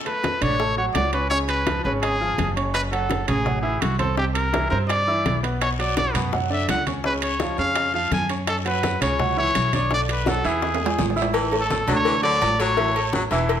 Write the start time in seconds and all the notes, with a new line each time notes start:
0.05 A3 A4 B4 A5, high bongo, high conga, high timbale
0.24 high bongo, high conga, high timbale
0.41 A1 D3 D4 C#5 D5, high bongo, high conga, low conga, high timbale
0.59 A3 A4 A5, high bongo, high conga
0.77 F#3 F#4 C#5 F#5, high conga
0.94 C#2 D5, high bongo, low bongo, high conga, high timbale, low timbale
1.13 C#4 B4 C#5 C#6, high bongo, high timbale
1.30 C#3 C#4 C#5, high bongo, high conga
1.48 B4, high bongo, high conga, high timbale
1.67 F3 F4 F5, high bongo, high conga, high timbale
1.84 G#1 C#3 C#4 B4 C#5, high bongo, high conga
2.02 G#4, high bongo, high conga, high timbale
2.21 F3 F4 F5, high conga
2.38 F#1, high bongo, low bongo, high conga, high timbale
2.56 C#4 C#5 C#6, high bongo, high conga, high timbale
2.74 B4, high bongo, high conga, high timbale
2.91 F#3 F#4 A4 F#5, high bongo, high conga, high timbale
3.10 high bongo, high conga, high timbale
3.27 A1 C#3 C#4 G#4 C#5, high bongo, high conga, low conga, high timbale
3.45 F#3 F#4 F#5, high bongo, high conga, low conga
3.62 E3 E4 G#4 E5, high conga
3.81 C2 F#4, high bongo, low bongo, high timbale
3.99 C4 A4 C5 C6, high bongo, high conga, high timbale
4.17 C3 C4 G4 C5, high bongo, high conga
4.34 A#4, high bongo, high conga, high timbale
4.53 E3 E4 E5, high bongo, high conga, high timbale
4.70 G2 C3 C4 A#4 C5, high bongo, high conga
4.88 D5, high bongo, high conga, high timbale
5.07 E3 E4 E5, high conga
5.26 B1, high bongo, low bongo, high conga, high timbale
5.43 B3 B4 B5, high bongo, high conga, high timbale
5.61 C#5, high bongo, high conga, high timbale, long guiro
5.79 F#3 F#4 D5 F#5, high bongo, high conga, high timbale
5.97 D5, high bongo, high conga, high timbale, short guiro
6.14 F#2 B2 B3 B4, high bongo, high conga, low conga, high timbale, short guiro
6.32 F#3 F#4 F#5, high bongo, high conga, low conga, long guiro
6.50 D3 D4 D5 E5, high conga
6.68 C#2 F#5, high bongo, low bongo, high conga, high timbale, low timbale, short guiro
6.86 C#4 C#5 C#6, high bongo, high conga, high timbale, short guiro
7.04 C#3 C#4 B4 C#5, high bongo, high conga, long guiro
7.22 C#5, high bongo, high conga, high timbale
7.40 F3 F4 F5, high bongo, high conga, high timbale, short guiro
7.57 F2 C#3 C#4 C#5 F5, high bongo, high conga, short guiro
7.75 high bongo, high conga, high timbale, long guiro
7.93 F3 F4 F5, high conga
8.11 F#2 G#5, high bongo, low bongo, high conga, high timbale, short guiro
8.29 C#4 C#5 C#6, high bongo, high conga, high timbale, short guiro
8.47 A4, high bongo, high conga, high timbale, long guiro
8.65 F#3 F#4 B4 F#5, high bongo, high conga, high timbale
8.83 high bongo, high conga, high timbale, short guiro
9.01 C#2 C#3 C#4 C#5, high bongo, high conga, low conga, high timbale, short guiro
9.19 F#3 F#4 F#5, high bongo, high conga, low conga, long guiro
9.37 E3 E4 C#5 E5, high conga
9.55 B1, high bongo, low bongo, high conga, high timbale, short guiro
9.73 D4 C#5 D5 D6, high bongo, high conga, high timbale, short guiro
9.91 D3 D4 D5, high bongo, high conga, long guiro
10.09 B4, high bongo, high conga, high timbale
10.26 F#3 F#4 A4 F#5, high bongo, high conga, high timbale, short guiro
10.44 E2 E3 E4 G#4 E5, high bongo, high conga, short guiro
10.62 high bongo, high conga, high timbale, long guiro
10.75 high timbale
10.80 G#3 G#4 G#5, high conga
10.86 low timbale
10.98 A1, high bongo, low bongo, high conga, low timbale, short guiro
11.10 low timbale
11.16 E4 E5 E6, high bongo, high conga, short guiro
11.22 low timbale
11.33 E3, cowbell, high conga, low agogo, long guiro
11.52 A3 A4 C#5, high conga, low agogo
11.61 A4
11.70 cowbell, high conga, short guiro
11.87 D2 D3 F#3 D4 D5, cowbell, high conga, low conga, low agogo, short guiro
11.94 C#5
12.05 E3, cowbell, high conga, low agogo, long guiro
12.22 D3 F#3 F#4 A4 D5, cowbell, high conga
12.42 A1, cowbell, high conga, low timbale, low agogo, short guiro
12.59 F#3 A3 A4 C#5, cowbell, low agogo, short guiro
12.76 E3 E4 E5, cowbell, high conga, low agogo, long guiro
12.95 A3 A4 C#5, high conga, low agogo
13.13 F#3, cowbell, high conga, short guiro
13.31 E1 E3 E4 E5, cowbell, high conga, low agogo, short guiro
13.49 cowbell, high conga, low agogo, long guiro